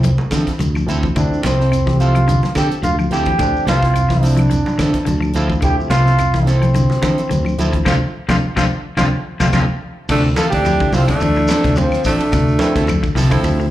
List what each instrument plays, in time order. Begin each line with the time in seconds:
Already playing: fingered electric bass C2, trombone C4
0.03 muted clean electric guitar stroke, closed hi-hat, high conga, shekere
0.18 high conga, low conga, shekere
0.31 fingered electric bass D3, clean electric guitar E3 F3 C4 E4, kick, snare, closed hi-hat, high conga, claves, shekere
0.35 clean electric guitar A4
0.47 kick, snare, closed hi-hat, shekere
0.59 fingered electric bass D2, clean electric guitar D3, closed hi-hat, high conga, shekere
0.75 clean electric guitar F3, claves, shekere
0.87 fingered electric bass D2, tine electric piano F3 A3 C4 E4, clean electric guitar F3 C4 A4, closed hi-hat, shekere
1.03 clean electric guitar E3, kick, shekere
1.15 fingered electric bass D2, clean electric guitar D3, tine electric piano F3 A3 C4 E4, trombone D4, kick, closed hi-hat, low conga, claves, shekere
1.34 shekere
1.43 fingered electric bass C2, clean electric guitar C3 F3 C4 E4, trombone C4, snare, closed hi-hat, high conga, shekere
1.60 clean electric guitar C4 E4 A4, snare, shekere
1.72 clean electric guitar C3, closed hi-hat, claves, shekere
1.86 clean electric guitar E3, tine electric piano F3 A3 C4 G4, kick, snare, shekere
2.00 clean electric guitar F3 C4 E4 A4, trombone F4, closed hi-hat, shekere
2.15 clean electric guitar F3, closed hi-hat, claves, shekere
2.28 clean electric guitar D3, closed hi-hat, high conga, shekere
2.43 snare, high conga, low conga, shekere
2.55 fingered electric bass D3, clean electric guitar C4 A4, trombone G4, muted clean electric guitar stroke, kick, snare, closed hi-hat, high conga, claves, shekere
2.71 closed hi-hat, shekere
2.83 fingered electric bass D2, clean electric guitar D3, trombone F4, closed hi-hat, high conga, shekere
2.99 clean electric guitar F3, claves, shekere
3.10 fingered electric bass D2, tine electric piano F3 A3 C4 E4, clean electric guitar F3 C4 E4 A4, trombone G4, closed hi-hat, shekere
3.26 clean electric guitar E3, kick, closed hi-hat, shekere
3.39 fingered electric bass D2, clean electric guitar D3, tine electric piano F3 A3 C4 D4, kick, closed hi-hat, low conga, claves, shekere
3.56 shekere
3.67 fingered electric bass C2, clean electric guitar C3 F3 C4 E4 A4, trombone F4, snare, closed hi-hat, high conga, shekere
3.83 clean electric guitar C4 E4, kick, snare, shekere
3.94 clean electric guitar C3, closed hi-hat, claves, shekere
4.09 clean electric guitar E3, tine electric piano F3 A3 C4 E4, kick, snare, high conga, shekere
4.22 clean electric guitar F3 C4 E4, trombone D4, open hi-hat, shekere
4.37 clean electric guitar F3, closed hi-hat, claves
4.41 shekere
4.50 clean electric guitar C3, closed hi-hat, high conga, shekere
4.66 high conga, low conga, shekere
4.78 fingered electric bass D3, clean electric guitar E3 F3 C4 E4 A4, kick, snare, closed hi-hat, high conga, claves, shekere
4.94 kick, snare, closed hi-hat, shekere
5.05 fingered electric bass D2, clean electric guitar D3, tine electric piano A5, closed hi-hat, high conga, shekere
5.20 clean electric guitar F3, claves, shekere
5.33 fingered electric bass D2, clean electric guitar F3 C4 E4 A4, tine electric piano F3 A3 C4 E4 F5, closed hi-hat, shekere
5.48 clean electric guitar E3, kick, shekere
5.61 fingered electric bass D2, clean electric guitar D3, tine electric piano F3 A3 C4 E4, trombone G4, kick, closed hi-hat, low conga, claves, shekere
5.80 shekere
5.90 fingered electric bass C2, clean electric guitar C3 F3 C4 E4 A4, trombone F4, snare, closed hi-hat, high conga, shekere
6.05 clean electric guitar C4 E4 A4, snare, shekere
6.18 clean electric guitar C3, closed hi-hat, claves, shekere
6.34 clean electric guitar E3, tine electric piano F3 A3 C4 E4, kick, snare, shekere
6.47 clean electric guitar F3 C4 E4 A4, trombone C4, snare, closed hi-hat, shekere
6.62 clean electric guitar F3, closed hi-hat, claves, shekere
6.75 clean electric guitar D3, closed hi-hat, high conga, shekere
6.90 snare, low conga, shekere
7.02 fingered electric bass D3, clean electric guitar E3 F3 C4 E4 A4, kick, snare, closed hi-hat, high conga, claves, shekere
7.18 closed hi-hat, shekere
7.29 fingered electric bass D2, clean electric guitar D3, closed hi-hat, high conga, shekere
7.45 clean electric guitar F3, claves, shekere
7.58 fingered electric bass D2, tine electric piano F3 A3 C4 E4, clean electric guitar F3 C4 E4 A4, closed hi-hat, high conga, shekere
7.73 clean electric guitar E3, kick, closed hi-hat, shekere
7.85 fingered electric bass D2, clean electric guitar C3 D3 F3 C4 D4 F4, tine electric piano A3 C4 D4, trombone F4, kick, snare, high conga, claves, shekere
8.29 fingered electric bass D2, clean electric guitar C3 D3 F3 C4 D4 F4, tine electric piano A3 C4 D4, trombone F4, kick, snare, high conga, claves, shekere
8.56 fingered electric bass D2, clean electric guitar C3 D3 F3 C4 D4 F4, tine electric piano A3 C4 D4, trombone F4, kick, snare, high conga, claves, shekere
8.97 fingered electric bass D2, clean electric guitar C3 D3 F3 C4 D4 F4, tine electric piano A3 C4 D4, trombone F4, kick, snare, high conga, claves, shekere
9.40 fingered electric bass D2, clean electric guitar C3 D3 F3 C4 D4 F4, tine electric piano A3 C4 D4, trombone F4, kick, snare, high conga, claves, shekere
9.52 fingered electric bass D2, clean electric guitar C3 D3 F3 C4 D4 F4, tine electric piano A3 C4 D4, trombone F4, kick, snare, high conga, claves, shekere
10.09 fingered electric bass D2, clean electric guitar C3 F3 C4 E4 A4, tenor saxophone A3, trombone D4, kick, crash, low conga, claves, shekere
10.25 shekere
10.36 clean electric guitar E3 F3 C4 E4 A4, tenor saxophone F4, trombone A4, snare, ride bell, high conga, shekere
10.51 fingered electric bass D2, clean electric guitar C4 E4 A4, tenor saxophone D4, trombone G4, kick, ride bell, shekere
10.65 tine electric piano F3 A3 C4 E4, clean electric guitar F3, ride bell, claves, shekere
10.80 clean electric guitar D3, kick, shekere
10.92 fingered electric bass C2, clean electric guitar C3 F3 C4 E4 A4, tenor saxophone C4, trombone F4, open hi-hat, high conga, low conga, shekere
11.08 clean electric guitar D3 C4 E4, tenor saxophone A3, trombone D4, kick, snare, ride bell, claves, shekere
11.20 fingered electric bass D2, clean electric guitar E3, ride bell, shekere
11.36 clean electric guitar E3, shekere
11.48 clean electric guitar F3 C4 E4 A4, snare, ride bell, high conga, claves, shekere
11.64 fingered electric bass D2, clean electric guitar C3, kick, snare, ride bell, shekere
11.76 clean electric guitar D3, tenor saxophone F3, trombone C4, ride bell, high conga, shekere
11.91 snare, claves, shekere
12.04 fingered electric bass A1, clean electric guitar F3 C4 E4 A4, tenor saxophone A3, trombone D4, kick, snare, open hi-hat, shekere
12.20 muted fingered electric bass stroke, ride bell, shekere
12.32 fingered electric bass D2, clean electric guitar C3, kick, snare, ride bell, low conga, claves, shekere
12.48 shekere
12.59 tine electric piano F3 A3 C4 E4, clean electric guitar F3 C4 E4, muted clean electric guitar stroke, snare, ride bell, high conga, shekere
12.75 fingered electric bass D2, clean electric guitar C4 E4 A4, kick, snare, ride bell, shekere
12.87 clean electric guitar F3, ride bell, high conga, claves, shekere
13.03 clean electric guitar D3, kick, shekere
13.15 fingered electric bass C2, clean electric guitar C3 F3 C4 E4 A4, tine electric piano C4 E4, open hi-hat, high conga, low conga, shekere
13.30 clean electric guitar D3 C4 E4 A4, tine electric piano F3 A3 C4 E4, kick, ride bell, claves, shekere
13.43 fingered electric bass D2, muted clean electric guitar stroke, ride bell, shekere
13.60 clean electric guitar D3, shekere